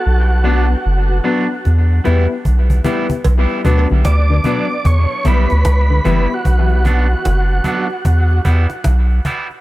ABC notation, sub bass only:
X:1
M:4/4
L:1/16
Q:"Swing 16ths" 1/4=75
K:Bm
V:1 name="Sub bass" clef=bass
B,,,4 F,,,2 z2 E,,2 E,, z B,,,2 z2 | B,,, z D,, B,,, D,,2 z2 E,, z B,,, D,, C,,2 F,,, z | B,,,4 F,,,2 z2 E,,2 E,, z B,,,2 z2 |]